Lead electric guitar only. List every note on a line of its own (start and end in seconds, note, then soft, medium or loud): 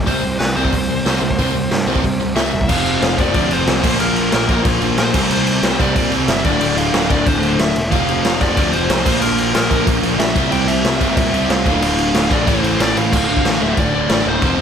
0.07 0.38 C5 medium
0.39 0.56 B4 medium
0.56 2.33 C5 medium
2.36 2.69 E5 loud
2.69 3.15 F5 loud
3.20 3.53 D5 loud
3.53 4.00 C5 loud
4.00 4.33 A#4 medium
4.34 4.64 A#4 medium
4.99 5.32 C5 loud
5.33 5.82 C5 loud
5.82 6.11 D5 loud
6.29 6.46 E5 loud
6.46 6.78 D5 loud
6.78 7.09 F5 loud
7.11 7.26 D5 loud
7.28 7.58 C5 loud
7.60 7.90 E5 loud
7.91 8.40 F5 medium
8.41 8.74 D5 loud
8.73 9.22 C5 medium
9.22 9.54 A#4 medium
9.56 9.85 A#4 medium
10.19 10.49 E5 loud
10.52 10.68 G5 loud
10.68 11.15 E5 loud
11.16 11.47 E5 loud
11.50 11.82 F5 loud
11.83 12.33 F5 medium
12.32 12.47 D5 medium
12.48 12.63 C5 medium
12.64 12.81 C5 medium
12.81 12.97 D5 medium
12.98 13.64 F5 medium
13.63 13.78 E5 medium
13.79 14.28 D5 loud
14.29 14.61 C5 loud